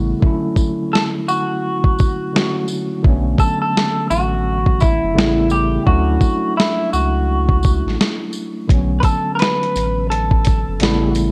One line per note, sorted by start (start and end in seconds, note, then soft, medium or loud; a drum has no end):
0.00 0.14 A1 loud
0.00 0.21 C#3 medium
0.00 0.22 G3 medium
0.00 0.22 A3 medium
0.00 0.23 B3 medium
0.00 0.23 E4 medium
0.20 2.29 D3 medium
0.20 2.30 F#3 medium
0.20 2.30 A3 medium
0.20 kick loud
0.25 2.31 C#4 medium
0.25 2.32 E4 medium
0.56 kick medium
0.56 tambourine soft
0.93 1.03 A4 loud
0.93 snare medium
1.28 2.65 F#4 medium
1.28 tambourine medium
1.84 kick medium
1.99 kick loud
1.99 tambourine soft
2.33 3.02 D3 soft
2.33 3.03 F#3 soft
2.33 3.05 A3 soft
2.33 3.05 C#4 soft
2.33 3.05 F#4 medium
2.33 snare loud
2.68 tambourine medium
3.03 3.36 B1 loud
3.03 5.11 D3 medium
3.03 5.12 F#3 medium
3.03 5.13 A3 medium
3.03 kick loud
3.07 5.14 B3 medium
3.07 5.14 C#4 medium
3.38 3.61 A4 loud
3.38 kick medium
3.38 tambourine soft
3.62 4.10 A4 loud
3.77 snare loud
4.10 4.99 A1 medium
4.10 4.83 F#4 loud
4.10 tambourine medium
4.66 kick medium
4.80 5.47 E4 medium
4.80 kick medium
4.80 tambourine soft
5.04 5.15 F#1 medium
5.14 5.78 A1 loud
5.14 5.86 C#3 medium
5.14 5.86 G3 medium
5.14 5.86 A3 medium
5.14 5.87 B3 medium
5.14 5.87 E4 medium
5.18 snare loud
5.50 5.86 G4 medium
5.50 tambourine medium
5.85 6.18 D2 loud
5.85 8.65 F#3 medium
5.85 8.66 A3 medium
5.85 8.64 D4 medium
5.85 6.57 F#4 medium
5.85 kick loud
5.90 8.67 C#4 medium
5.90 8.68 E4 medium
6.21 kick loud
6.21 tambourine soft
6.57 6.93 E4 medium
6.57 snare loud
6.93 7.82 C#2 medium
6.93 7.95 F#4 medium
6.93 tambourine medium
7.49 kick medium
7.63 kick medium
7.63 tambourine medium
7.86 7.97 A1 medium
7.86 snare soft
8.01 snare loud
8.33 tambourine medium
8.68 9.00 B1 loud
8.68 10.76 D3 medium
8.68 10.77 F#3 medium
8.68 10.78 A3 medium
8.68 kick loud
8.68 closed hi-hat medium
8.72 10.78 B3 medium
8.72 10.79 C#4 medium
9.00 9.04 B4 medium
9.00 kick loud
9.00 closed hi-hat medium
9.00 tambourine soft
9.05 9.35 A4 medium
9.35 9.39 A#4 medium
9.35 closed hi-hat medium
9.40 10.10 B4 loud
9.40 snare loud
9.63 closed hi-hat soft
9.76 10.64 A1 medium
9.76 closed hi-hat medium
9.76 tambourine medium
10.10 11.12 A4 medium
10.10 closed hi-hat medium
10.31 kick medium
10.45 kick loud
10.45 closed hi-hat medium
10.45 tambourine soft
10.68 10.80 F#1 medium
10.80 11.32 A1 loud
10.80 11.32 C#3 medium
10.80 11.32 G3 medium
10.80 11.32 A3 medium
10.80 11.32 B3 medium
10.80 11.32 E4 medium
10.80 snare loud
10.80 closed hi-hat medium
11.15 closed hi-hat medium
11.15 tambourine medium